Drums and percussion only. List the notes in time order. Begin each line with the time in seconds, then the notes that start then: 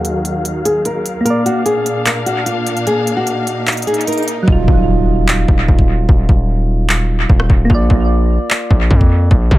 0.05 closed hi-hat
0.25 closed hi-hat
0.45 closed hi-hat
0.65 closed hi-hat
0.85 closed hi-hat
1.06 closed hi-hat
1.26 closed hi-hat
1.46 closed hi-hat
1.66 closed hi-hat
1.86 closed hi-hat
2.06 clap, closed hi-hat
2.26 closed hi-hat
2.46 closed hi-hat
2.67 closed hi-hat
2.77 closed hi-hat
2.87 closed hi-hat
3.07 closed hi-hat
3.27 closed hi-hat
3.47 closed hi-hat
3.67 clap, closed hi-hat
3.72 closed hi-hat
3.77 closed hi-hat
3.82 closed hi-hat
3.87 closed hi-hat
3.94 closed hi-hat
4.01 closed hi-hat
4.07 closed hi-hat
4.13 closed hi-hat
4.18 closed hi-hat
4.23 closed hi-hat
4.28 closed hi-hat
4.48 kick
4.68 kick
5.28 clap
5.48 kick
5.68 kick
5.79 kick
6.09 kick
6.29 kick
6.89 clap
7.29 kick
7.40 cross-stick
7.50 kick
7.70 kick
7.90 kick
8.50 clap
8.71 kick
8.91 kick
9.01 kick
9.31 kick
9.51 kick